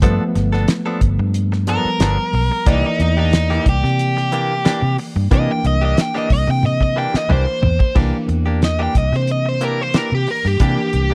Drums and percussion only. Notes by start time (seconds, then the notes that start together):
0.02 kick, closed hi-hat
0.35 snare, closed hi-hat
0.53 snare
0.68 snare, closed hi-hat
1.01 kick, closed hi-hat
1.34 closed hi-hat
1.52 snare
1.67 closed hi-hat
2.00 snare, closed hi-hat
2.33 open hi-hat
2.66 kick, closed hi-hat
3.00 closed hi-hat
3.33 snare, closed hi-hat
3.51 snare
3.66 kick, closed hi-hat
3.84 snare
3.99 closed hi-hat
4.17 snare
4.32 closed hi-hat
4.65 snare, closed hi-hat
4.98 open hi-hat
5.31 kick, closed hi-hat
5.64 closed hi-hat
5.97 snare, closed hi-hat
6.15 snare
6.30 kick, open hi-hat
6.63 high tom
6.81 kick
7.14 snare
7.30 mid tom
7.63 floor tom
7.80 kick
7.96 kick, crash
8.29 closed hi-hat
8.62 snare, closed hi-hat
8.95 kick, closed hi-hat
9.13 snare
9.27 closed hi-hat
9.61 closed hi-hat
9.94 snare, closed hi-hat
10.27 open hi-hat
10.45 snare
10.60 kick, closed hi-hat
10.93 closed hi-hat